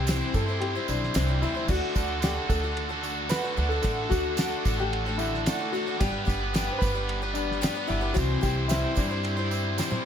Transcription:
Already playing: C2 G3 C4 E4 G4 C5
0.05 C3 E3 G3 C4 E4 C5, snare, ride bell, tambourine
0.19 G3 C4 E4 C5
0.33 G2 E3 G3 C4 E4 A4 C5, kick, tambourine
0.46 G3 C4 E4 C5
0.61 G4, ride bell
0.73 G3 C4 E4 C5
0.87 B1 G3 C4 D4 E4 C5, tambourine
1.03 snare
1.14 C2 C3 E3 G3 C4 E4 C5, snare, ride bell, tambourine
1.28 G3 C4 E4
1.41 D2 E3 G3 C4 E4 C5, tambourine
1.55 G3 C4 E4 C5
1.68 D2 D3 A3 D4 F#4 A4, kick, crash, tambourine
1.93 D2 D3 A3 D4 F#4, kick, snare, tambourine
1.97 A4
2.08 D4 F#4 A4
2.20 D3 A3 D4 F#4 A4, snare, ride bell, tambourine
2.24 G4
2.35 D4 F#4 A4
2.48 D2 D3 A3 D4 F#4 A4, kick, tambourine
2.61 D4 F#4 A4
2.66 A3
2.77 ride bell
2.90 A3 D4 F#4 A4
3.02 D3 D4 F#4 A4, tambourine
3.29 D3 A3 D4 F#4 A4 B4, snare, ride bell, tambourine
3.44 A3 D4 F#4
3.57 D2 D3 A3 D4 F#4 A4, tambourine
3.69 A3 D4 F#4 A4
3.82 A1 D3 A3 D4 F#4 A4, kick, ride bell, tambourine
4.10 D2 D3 A3 D4 F#4 A4, kick, snare, tambourine
4.24 D4 F#4 A4
4.37 D3 A3 D4 F#4 A4, snare, ride bell, tambourine
4.51 D4 F#4 A4
4.63 A1 D3 A3 D4 F#4 A4, kick, tambourine
4.77 D4 F#4 G4 A4
4.81 A3
4.93 ride bell
5.05 A3 D4 F#4 A4
5.18 D3 D4 E4 F#4 A4, tambourine
5.34 snare
5.45 D3 A3 D4 F#4 A4, snare, ride bell, tambourine
5.59 A3 D4 F#4
5.72 D3 A3 D4 F#4 A4, tambourine
5.86 A3 D4 F#4 A4
5.98 G1 G2 D3 G3 B3 D4 G4 B4, kick, ride bell, tambourine
6.02 G4
6.26 G1 G3 B3 D4 G4 B4, kick, snare, tambourine
6.40 B3 D4 B4
6.53 G2 D3 G3 B3 D4 G4 B4, snare, ride bell, tambourine
6.67 B3 D4 B4
6.71 C5
6.78 G1 G3 B4, kick
6.82 B3 D4 G4 B4, tambourine
6.95 G3 B3 D4 G4 B4
7.09 ride bell
7.22 G3 B3 D4 G4 B4
7.34 G3 B3 D4, tambourine
7.38 B4
7.51 snare
7.61 G2 D3 G3 B3 D4 G4, snare, ride bell, tambourine
7.66 B4
7.75 G3 B3 D4 G4
7.88 G1 G3 B3 D4 E4 G4, tambourine
7.92 B4
8.01 G3 B3 D4 G4 B4
8.14 C2 C3 E3 G3 F#4, kick, ride bell, tambourine
8.18 G3 C4 E4 C5
8.41 C2 E3 G3 C4 G4, kick, snare, tambourine
8.45 E4 C5
8.57 G3 C4 E4 C5
8.68 C3 E3 G3 C4 E4, snare, ride bell, tambourine
8.72 E4 C5
8.84 G3 C4 E4 C5
8.95 G2 E3 G3 C4 D4 E4, kick, tambourine
9.00 C5
9.09 G3 C4 E4 C5
9.23 ride bell, tambourine
9.36 G3 C4 E4 C5
9.51 G3 C4 E4 C5, tambourine
9.77 C3 E3 G3 C4 E4 C5, snare, tambourine
9.91 G3 C4 E4, high tom

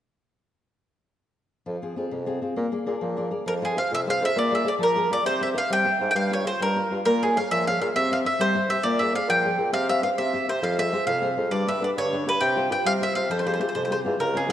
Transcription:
1.66 F2 F3
1.82 C4 F4 G#4
1.96 F2 C4 F4 G#4
2.11 F2 C3
2.26 C4 F4 G#4
2.42 C4 F4 G#4
2.56 A#2 A#3
2.72 G#4 A#4 D5
2.86 A#2 G#4 A#4 D5
3.01 A#2 F3
3.17 G#4 A#4 D5
3.31 G#4 A#4 D5
3.46 F2 F3 A#4
3.62 F4 G#4 C5
3.76 C3 F4 G#4 C5 F5
3.91 F2 C3 E5
4.07 F4 G#4 C5 F5
4.21 F2 F4 G#4 C5
4.25 E5
4.35 A#2 A#3 D5
4.51 G#4 A#4 D5 E5
4.65 F2 G#4 A#4 D5
4.78 A#2 F3
4.83 A#4
4.96 G#4 A#4 D5
5.10 A#2 G#4 A#4 D5
5.25 C3 C4 C5
5.40 A#4 C5 E5
5.54 G2 A#4 C5 E5 F5
5.70 C3 G3 G5
5.85 A#4 C5 E5
6.00 G#2 A#4 C5 E5
6.11 G2 G3 G5
6.16 F5
6.30 F4 G4 A#4 C#5
6.45 C#3 F4 G4 A#4 C5
6.60 G2 G3 A#4
6.76 F4 G4 A#4
6.91 G2 F4 G4 A#4
7.05 A#2 A#3 A#4
7.22 G#4 A#4 C#5
7.37 F2 G#4 A#4 C#5 F5
7.51 A#2 F3 E5
7.67 G#4 A#4 C#5 F5
7.81 A#2 G#4 A#4 C#5 F5
7.96 C3 C4 E5
8.11 A#4 C5 E5 F5
8.25 A#4 C5 E5
8.39 C3 G3 C5
8.55 A#4 C5 E5
8.69 C3 A#4 C5 E5
8.83 A#2 A#3 D5
8.99 G#4 A#4 D5 E5
9.14 F2 G#4 A#4 D5 F5
9.28 A#2 F3 G5
9.45 G#4 A#4 D5
9.57 A#2 G#4 A#4 D5
9.73 C3 C4 F5
9.89 G4 C5 E5 F5
10.02 G2 G4 C5 F5
10.17 C3 C4 E5
10.33 G4 C5 E5
10.48 C3 G4 C5 E5
10.62 F2 F3 F5
10.78 F4 G#4 C5 E5
10.92 C3 F4 G#4 C5
11.06 F2 C3 F5
11.22 F4 G#4 C5
11.36 F2 F4 G#4 C5
11.51 G2 G3 D5
11.67 D4 G4 B4 E5
11.82 D3 D4 G4 B4 D5
11.97 G2 D3 C#5
12.13 D4 G4 B4
12.26 G2 D4 G4 B4
12.40 C3 G5
12.56 F4 G4 C5
12.70 G2 F4 G4 C5 G5
12.85 C3 G3 F5
13.01 F4 G4 C5 E5
13.15 C3 F4 G4 C5 F5
13.30 F2 F3 C5
13.39 C5
13.46 F4 G4 G#4 C5
13.54 C5
13.60 C3 F4 G4 G#4 C5
13.69 C5
13.75 F2 C3 C5
13.85 C5
13.90 F4 G4 G#4 C5
14.05 E2 F4 G4 G#4
14.19 C#2 C#3 A#4
14.35 C4 C#4 F4 G#4
14.48 C4 C#4 F4

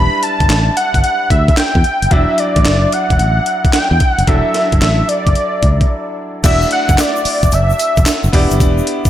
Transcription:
Already playing: G3 D4 E4 B4 B5
0.23 A5, closed hi-hat
0.40 G1, kick, closed hi-hat
0.49 A1, snare, clap, closed hi-hat
0.77 F#5, closed hi-hat
0.94 G1, kick, closed hi-hat
1.04 F#5, closed hi-hat
1.30 D2 E5, kick, closed hi-hat
1.48 kick, closed hi-hat
1.57 G5, snare, clap, closed hi-hat
1.75 E2, kick
1.84 closed hi-hat
2.02 F#1, closed hi-hat
2.11 E1 F#3 D4 E4 D5 E5, kick, closed hi-hat
2.38 D5, closed hi-hat
2.56 A1, kick, closed hi-hat
2.65 F#1, snare, clap, closed hi-hat
2.92 F#5, closed hi-hat
3.10 E1, kick, closed hi-hat
3.19 A1, closed hi-hat
3.46 closed hi-hat
3.65 kick, closed hi-hat
3.73 G5, snare, clap, closed hi-hat
3.91 E2
4.00 kick, closed hi-hat
4.11 F#5
4.18 F#1, closed hi-hat
4.27 E1 F#3 D4 E4 A4 E5, kick, closed hi-hat
4.54 snare, closed hi-hat
4.72 F#1, kick, closed hi-hat
4.81 A1 E5, snare, clap, closed hi-hat
5.08 D5, closed hi-hat
5.27 F#1, kick, closed hi-hat
5.35 closed hi-hat
5.63 C#2, kick, closed hi-hat
5.81 kick, closed hi-hat
6.43 E1 A3 D4 E4 F#4 D5 E5, kick, closed hi-hat, crash, tambourine, shaker
6.62 shaker
6.71 F#5, closed hi-hat
6.89 F#1, kick, closed hi-hat, shaker
6.98 D5, snare, clap, closed hi-hat, tambourine, shaker
7.16 shaker
7.25 muted fingered electric bass stroke, open hi-hat, tambourine
7.43 E1, kick, closed hi-hat, shaker
7.51 F#1 E5, closed hi-hat, tambourine, shaker
7.70 shaker
7.79 closed hi-hat, tambourine, shaker
7.97 E1, kick, closed hi-hat, shaker
8.06 snare, clap, closed hi-hat, tambourine, shaker
8.24 F#1, shaker
8.33 E1 B3 D4 E4 G4 D5, kick, open hi-hat, tambourine
8.51 F#1, closed hi-hat, shaker
8.60 E1, kick, closed hi-hat, tambourine, shaker
8.78 shaker
8.87 closed hi-hat
9.05 muted fingered electric bass stroke, kick, closed hi-hat, shaker

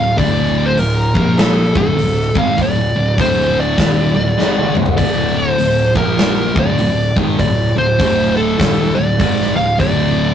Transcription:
Already playing: D1 D2 A2 F5
0.17 D1 D2 A2 D3 D5, kick, open hi-hat
0.66 C5
0.77 D1 D2 A2 A#4, open hi-hat
1.14 A#1 A#2 F3 A#3, kick
1.38 A4, snare, open hi-hat
1.74 D1 D2 A2 D3 A4, kick
1.97 D1 D2 A2, open hi-hat
2.35 G#1 G#2 D#3 G#3 F5, kick
2.58 D1 D2 A2, kick, open hi-hat
2.62 D5
2.96 D1 D2 A2
3.18 D1 D2 A2 D3 C5, kick, open hi-hat
3.60 D5
3.78 D#1 D#2 A#2 D#3, kick, snare, open hi-hat
4.15 D1 D2 A2
4.38 G#1 G#2 D#3 G#3, snare
4.57 high tom
4.75 D1 D2 A2, mid tom
4.86 floor tom
4.97 D1 D2 A2 D3 D5, kick, open hi-hat
5.36 C5
5.58 D1 D2 A2, open hi-hat
5.95 A#1 A#2 F3 A#3 A#4, kick
6.18 snare, open hi-hat
6.55 D1 D2 A2 D3 D5, kick
6.78 D1 D2 A2, open hi-hat
7.16 G#1 G#2 D#3 G#3, kick
7.38 D1 D2 A2 D5, kick, open hi-hat
7.76 D1 D2 A2 C5
7.99 D1 D2 A2 D3, kick, open hi-hat
8.37 A4
8.58 D#1 D#2 A#2 D#3, kick, snare, open hi-hat
8.95 D1 D2 A2 D5
9.19 G#1 G#2 D#3 G#3, kick, open hi-hat
9.40 snare
9.56 D1 D2 A2 F5
9.78 D1 D2 A2 D3 D5, kick, open hi-hat

